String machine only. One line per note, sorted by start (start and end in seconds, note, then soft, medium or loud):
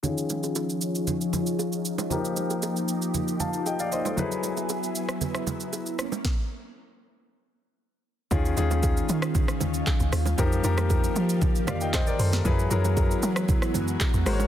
0.04 2.09 F3 medium
0.04 2.09 C#4 medium
0.04 4.14 D#4 medium
0.04 2.09 G#4 medium
2.11 4.16 F3 medium
2.11 4.16 A#3 medium
2.11 4.16 G4 medium
4.18 6.22 F#3 medium
4.18 5.97 B3 medium
4.18 5.97 E4 medium
4.18 6.23 G#4 medium
5.99 6.24 A#3 medium
5.99 6.24 C#4 medium
8.32 10.36 D#3 medium
8.32 10.36 G#3 medium
8.32 10.36 C#4 medium
8.32 12.41 F4 medium
10.38 12.43 D#3 medium
10.38 12.43 G3 medium
10.38 12.43 A#3 medium
12.45 14.24 E3 medium
12.45 14.47 G#3 medium
12.45 14.24 B3 medium
12.45 14.47 F#4 loud
14.26 14.47 C#3 medium
14.26 14.47 A#3 medium